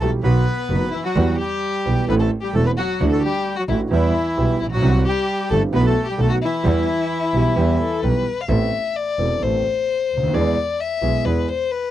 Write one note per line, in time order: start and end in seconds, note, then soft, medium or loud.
0.00 0.20 B1 medium
0.00 0.20 B1 soft
0.00 0.20 B2 medium
0.00 0.20 E3 soft
0.00 0.20 G3 soft
0.00 0.11 A3 medium
0.00 0.21 B3 soft
0.00 0.21 G4 soft
0.00 0.11 A4 medium
0.00 0.12 A4 medium
0.23 0.42 B1 medium
0.23 0.43 B1 medium
0.23 0.43 B2 medium
0.23 0.43 D#3 medium
0.23 0.43 F#3 medium
0.23 0.43 B3 medium
0.23 0.89 B3 medium
0.23 0.43 F#4 medium
0.23 0.95 B4 loud
0.23 0.89 B4 medium
0.69 0.89 F#1 medium
0.69 0.89 F#2 soft
0.69 0.89 D#3 soft
0.69 0.89 F#3 soft
0.69 0.89 B3 soft
0.69 0.89 F#4 soft
0.91 1.04 E3 medium
0.91 1.03 E4 medium
0.91 1.04 E4 medium
1.04 1.37 F#3 medium
1.04 1.36 F#4 medium
1.04 1.37 F#4 medium
1.16 1.35 E2 medium
1.16 1.36 E2 medium
1.16 1.36 E3 medium
1.16 1.36 G3 medium
1.16 1.36 B3 medium
1.16 1.36 G4 medium
1.38 2.05 G3 medium
1.38 2.04 G4 medium
1.38 2.05 G4 medium
1.85 2.05 B1 soft
1.85 2.05 B1 medium
1.85 2.05 B2 soft
1.85 2.05 E3 soft
1.85 2.05 G3 soft
1.85 2.05 B3 soft
1.85 2.05 G4 soft
2.08 2.28 A1 medium
2.08 2.28 A2 medium
2.08 2.28 E3 medium
2.08 2.28 A3 medium
2.08 2.15 B3 medium
2.08 2.28 C4 medium
2.08 2.28 A4 medium
2.08 2.14 B4 medium
2.08 2.15 B4 medium
2.19 2.31 A3 medium
2.19 2.30 A4 medium
2.19 2.31 A4 medium
2.42 2.54 G3 medium
2.42 2.53 G4 medium
2.42 2.55 G4 medium
2.53 2.74 E1 medium
2.53 2.74 E2 medium
2.53 2.74 E3 soft
2.53 2.74 A3 soft
2.53 2.66 A3 medium
2.53 2.74 C4 soft
2.53 2.65 A4 medium
2.53 2.74 A4 medium
2.53 2.66 A4 medium
2.65 2.72 B3 medium
2.65 2.70 B4 medium
2.65 2.71 B4 medium
2.77 3.10 F#3 medium
2.77 3.08 F#4 medium
2.77 3.10 F#4 medium
3.00 3.20 D2 medium
3.00 3.20 D3 medium
3.00 3.20 E3 medium
3.00 3.20 A3 medium
3.00 3.20 D4 medium
3.00 3.20 F#4 medium
3.09 3.23 A3 medium
3.09 3.21 A4 medium
3.09 3.23 A4 medium
3.22 3.56 G3 medium
3.22 3.54 G4 medium
3.22 3.56 G4 medium
3.56 3.64 F#3 medium
3.56 3.61 F#4 medium
3.56 3.64 F#4 medium
3.68 3.88 A1 medium
3.68 3.88 A1 soft
3.68 3.88 A2 soft
3.68 3.88 E3 soft
3.68 3.82 E3 soft
3.68 3.88 A3 soft
3.68 3.88 D4 soft
3.68 3.79 E4 medium
3.68 3.81 E4 medium
3.68 3.88 F#4 soft
3.91 4.11 E2 medium
3.91 4.11 E3 medium
3.91 4.57 E3 medium
3.91 4.11 G3 medium
3.91 4.11 B3 medium
3.91 4.56 E4 medium
3.91 4.60 E4 medium
3.91 4.11 G4 medium
4.37 4.57 B1 medium
4.37 4.57 B2 medium
4.37 4.57 E3 soft
4.37 4.57 G3 soft
4.37 4.57 B3 soft
4.37 4.57 G4 medium
4.60 4.82 A#1 medium
4.60 4.67 E3 medium
4.60 4.65 E4 medium
4.60 4.67 E4 medium
4.66 4.72 A1 soft
4.71 4.77 A#1 medium
4.71 5.05 F#3 medium
4.71 5.03 F#4 medium
4.71 5.08 F#4 medium
4.77 4.83 B1 medium
4.82 5.02 C2 medium
4.82 5.02 C3 medium
4.82 5.02 E3 medium
4.82 5.02 G3 medium
4.82 5.02 C4 medium
4.82 5.02 G4 medium
5.04 5.47 G4 medium
5.08 5.50 G3 medium
5.08 5.54 G4 medium
5.50 5.70 G1 soft
5.50 5.70 G1 medium
5.50 5.70 G2 soft
5.50 5.70 E3 soft
5.50 5.70 G3 soft
5.50 5.63 A3 medium
5.50 5.70 C4 soft
5.50 5.70 G4 soft
5.50 5.60 A4 medium
5.50 5.63 A4 medium
5.72 5.92 B1 medium
5.72 5.93 B1 medium
5.72 5.92 B2 medium
5.72 5.92 E3 medium
5.72 5.92 A3 medium
5.72 5.92 B3 medium
5.72 5.85 B3 medium
5.72 5.92 F#4 medium
5.72 5.83 B4 medium
5.72 5.86 B4 loud
5.84 6.08 A3 medium
5.84 6.04 A4 medium
5.84 6.07 A4 medium
6.05 6.17 G4 medium
6.10 6.20 G3 medium
6.10 6.20 G4 medium
6.18 6.38 B1 medium
6.18 6.38 B2 medium
6.18 6.38 D#3 soft
6.18 6.38 A3 soft
6.18 6.38 B3 soft
6.18 6.38 F#4 medium
6.18 6.28 A4 medium
6.22 6.32 A3 medium
6.22 6.33 A4 medium
6.29 6.35 F#4 medium
6.34 6.39 F#3 medium
6.34 6.38 F#4 medium
6.41 8.01 E3 medium
6.41 7.76 E4 medium
6.41 8.01 E4 medium
6.63 6.84 E2 medium
6.63 6.84 E2 loud
6.63 6.84 E3 medium
6.63 6.83 G3 medium
6.63 6.84 B3 medium
6.63 6.84 G4 medium
7.33 7.53 B1 medium
7.33 7.53 B1 soft
7.33 7.53 B2 soft
7.33 7.53 E3 soft
7.33 7.53 G3 soft
7.33 7.53 B3 soft
7.33 7.53 G4 soft
7.56 7.76 E2 medium
7.56 7.76 E3 medium
7.56 7.76 G3 medium
7.56 7.76 B3 medium
7.56 7.76 G4 medium
7.80 8.04 A4 medium
8.03 8.23 B1 medium
8.03 8.23 B2 medium
8.03 8.23 E3 soft
8.03 8.23 G3 soft
8.03 8.23 B3 soft
8.03 8.23 G4 soft
8.03 8.42 B4 medium
8.41 8.50 F5 medium
8.48 8.69 A1 medium
8.48 8.69 A2 medium
8.48 8.69 E3 medium
8.48 8.69 B3 medium
8.48 8.69 C4 medium
8.48 8.69 A4 medium
8.48 8.98 E5 medium
8.96 9.44 D5 medium
9.19 9.39 E1 medium
9.19 9.39 E1 soft
9.19 9.39 E2 soft
9.19 9.39 E3 soft
9.19 9.39 B3 soft
9.19 9.39 C4 soft
9.19 9.39 A4 soft
9.42 9.62 A1 soft
9.42 9.62 A1 medium
9.42 9.62 A2 soft
9.42 9.62 E3 soft
9.42 9.62 B3 soft
9.42 9.62 C4 soft
9.42 9.62 A4 soft
9.42 10.36 C5 medium
10.12 10.33 D2 soft
10.17 10.23 C#2 soft
10.23 10.29 D2 medium
10.28 10.34 D#2 medium
10.33 10.53 E2 medium
10.33 10.53 E3 medium
10.33 10.53 G#3 medium
10.33 10.54 B3 medium
10.33 10.54 G#4 medium
10.33 10.82 D5 medium
10.80 11.26 E5 medium
11.01 11.22 B1 medium
11.01 11.22 B2 soft
11.01 11.21 E3 soft
11.01 11.22 G#3 soft
11.01 11.22 B3 soft
11.01 11.22 G#4 soft
11.25 11.45 E2 soft
11.25 11.45 E2 medium
11.25 11.45 E3 medium
11.25 11.45 G#3 soft
11.25 11.45 B3 soft
11.25 11.45 G#4 soft
11.25 11.50 B4 medium
11.48 11.73 C5 medium
11.71 11.91 B4 medium